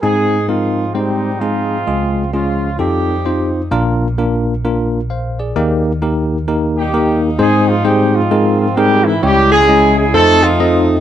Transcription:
0.02 G#2 G#3 C4 D#4 G#4
0.48 F3 G#3 C4 D#4 F4 A#4
0.94 G3 G#3 C4 D#4 G4 C5
1.40 F3 G#3 C4 D#4 F4 G#4
1.87 C#2 C#3 G#3 F4 G#4
2.33 F3 G#3 C#4 F4 G#4
2.79 F2 G3 C4 D#4 F4 G4 A4
3.25 C4 D#4 F4 C5
3.71 A#1 A#2 A#3 D4 F4 A#4
4.18 A#3 D4 F4 A#4
4.65 A#3 D4 F4 A#4
5.10 C5 F5
5.39 G#4 D5
5.56 D#2 D#3 A#3 D#4 G4 A#4
6.02 A#3 D#4 G4 A#4
6.48 A#3 D#4 G4 A#4
6.78 G3 A#3 D#4 G4
6.94 A#3 D#4 G4 A#4
7.39 G#2 G#3 C4 D#4 G#4 C5
7.69 F3 F4
7.85 G3 G#3 C4 D#4 G4 G#4 C5
8.15 F3 G#3 C4 F4
8.31 G#3 C4 D#4 G#4 A#4
8.60 F3 F4
8.77 G3 G#3 C4 D#4 G4 G#4 A#4
9.05 E3 E4
9.23 C#2 C#3 G3 G#3 C#4 E4 G4 G#4 C#5
9.52 G#3 C#4 E4 G#4
9.69 G#3 C#4 E4 G#4 D#5
9.98 G#3 G#4
10.14 F2 A3 C4 D#4 F4 A4 C5
10.44 F3 A3 C4 F4
10.60 C4 D#4 F4 A4 D#5

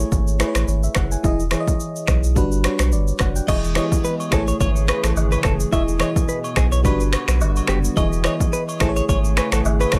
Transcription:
Already playing: A3 E4 G#4 C#5
0.12 G#1, kick, shaker
0.27 shaker
0.39 A3 E4 G#4 B4, finger snap, cross-stick, shaker
0.48 C#5
0.55 A1, finger snap, cross-stick, shaker
0.68 G#1 C#5, shaker
0.83 E5, shaker
0.95 F#1 F#5, finger snap, kick, cross-stick, shaker
1.12 G#5, shaker
1.23 E1 E3 E4 G#4 D#5, kick, shaker
1.40 shaker
1.51 E3 E4 G#4 C#5, finger snap, cross-stick, shaker
1.60 D#5
1.68 kick, shaker
1.80 shaker
1.96 shaker
2.07 B1, finger snap, kick, cross-stick, shaker
2.24 shaker
2.35 G1 G3 D4 F#4 B4, kick, shaker
2.52 shaker
2.63 G3 D4 F#4 C#5, finger snap, cross-stick, shaker
2.79 B1, finger snap, cross-stick, shaker
2.92 G1 D5, shaker
3.08 shaker
3.19 F#1 F#5, finger snap, kick, cross-stick, shaker
3.36 G5, shaker
3.47 E1 E3 G#3 B3 E4 G#4 D#5, kick, crash, high agogo, shaker
3.64 shaker
3.75 E3 E4 G4 C#5 D#5, finger snap, cross-stick, high agogo, shaker
3.83 G#4
3.92 kick, shaker
4.05 B4, shaker
4.20 high agogo, shaker
4.31 A1 C#3 E3 A3 E4 G#4 A4 C#5, finger snap, kick, cross-stick, shaker
4.48 C#5, shaker
4.61 G#1 C#5, kick, high agogo, shaker
4.76 shaker
4.88 B4, finger snap, cross-stick, high agogo, shaker
5.04 A1 A4, finger snap, cross-stick, shaker
5.17 G#1, low woodblock, shaker
5.32 B4, high agogo, shaker
5.43 F#1 A4, finger snap, kick, cross-stick, shaker
5.60 shaker
5.71 E1 B2 E3 B3 E4 G#4 D#5 E5, kick, high agogo, shaker
5.88 shaker
5.99 E3 E4 G#4 C#5 D#5, finger snap, cross-stick, high agogo, shaker
6.16 kick, shaker
6.29 B4, shaker
6.44 high agogo, shaker
6.56 B1 G#4, finger snap, kick, cross-stick, shaker
6.72 C#5, shaker
6.84 G1 D3 G3 D4 F#4 B4, kick, high agogo, shaker
7.00 shaker
7.13 finger snap, cross-stick, high agogo, shaker
7.28 B1, finger snap, cross-stick, shaker
7.41 G1, low woodblock, shaker
7.56 high agogo, shaker
7.67 F#1 G4, finger snap, cross-stick, shaker
7.85 shaker
7.96 E1 E3 E4 G#4 D#5, kick, high agogo, shaker
8.13 shaker
8.24 E3 E4 G#4 C#5 D#5, finger snap, cross-stick, high agogo, shaker
8.40 kick, shaker
8.53 B4, shaker
8.69 high agogo, shaker
8.80 A1 C#3 A3 E4 G#4 A4 C5, finger snap, kick, cross-stick, shaker
8.89 C#5
8.96 C#5, shaker
9.09 G#1 C#5, kick, high agogo, shaker
9.25 shaker
9.37 B4 G#5, finger snap, cross-stick, high agogo, shaker
9.52 A1 A4 F#5, finger snap, cross-stick, shaker
9.65 G#1 E5, low woodblock, shaker
9.80 B4, high agogo, shaker
9.92 F#1 A4 C#5, finger snap, kick, cross-stick, shaker

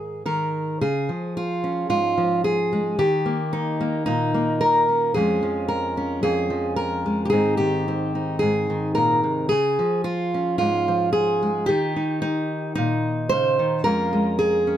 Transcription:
Already playing: G#2 D#3 G#4
0.26 D#3 A#4
0.81 C#3 G#4
1.09 F3
1.37 F4
1.64 C#4
1.89 G#2 F4
2.18 F3
2.44 G#4
2.73 G#3
2.99 D#3 G4
3.26 A#3
3.53 D#4
3.81 A#3
4.06 A#2 D#4
4.34 A#3
4.61 A#4
4.89 C#4
5.14 F2 F3 G#3 C#4 G#4
5.43 F3
5.68 A#4
5.97 C#4
6.23 F2 G#4
6.50 F3
6.76 A#4
7.06 G#3
7.25 G4
7.30 G#2 D#3 C4 D#4 G#4
7.57 D#3 G4
7.88 C4
8.15 D#4
8.39 G#2 G#4
8.70 D#3
8.95 A#2 A#4
9.24 C3
9.49 C#3 G#4
9.79 F3
10.04 F4
10.34 C#4
10.58 G#2 F4
10.88 F3
11.13 G#4
11.42 G#3
11.66 D#3 D#4 G4
11.96 D#4
12.22 D#4
12.75 A#2 D#4
13.29 C#3 C5
13.59 D#3
13.84 F2 G#3 C#4 F4 A#4
14.13 G#3
14.39 G#4
14.67 C#4

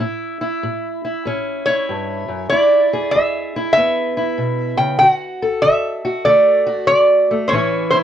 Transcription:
0.00 A2 E4
0.41 E4
0.63 A2
1.05 E4
1.26 A2 C#4
1.66 E4 C#5
1.89 G2
2.28 F#2
2.50 E2 E4 D5
2.93 G#4
3.11 E2 E5
3.56 E4
3.73 E2 E5
3.77 B3
4.17 E4
4.38 B2
4.77 C#3 G5
4.99 D3 F#4 G5
5.10 F#5
5.42 A4
5.62 D3 E5
6.05 F#4
6.25 D3 A3 D5
6.66 F#4
6.87 D3 D5
7.31 A3
7.48 A2 C5 C#5
7.52 E3 C#4 E4
7.90 E4 C5

